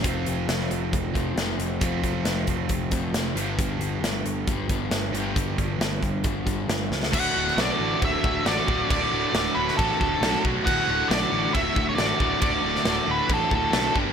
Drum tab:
CC |----------------|----------------|----------------|----------------|
HH |x-x-x-x-x-x-x-x-|x-x-x-x-x-x-x-x-|x-x-x-x-x-x-x-x-|x-x-x-x-x-x-x---|
SD |----oo------o---|----o-------o---|----o-------o---|----o-------o-oo|
BD |o-------o-o-----|o-o---o-o-o-----|o-------o-o-----|o-o---o-o-o-----|

CC |x---x---x---x---|x---x---x---x---|x---x---x---x---|x---x---x---x---|
HH |----------------|----------------|----------------|----------------|
SD |---oo-------o---|----o--o----o---|----o-------o---|---oo-------o---|
BD |o-------o-o---o-|o-------o-o---o-|o-------o-o---o-|o-------o-o---o-|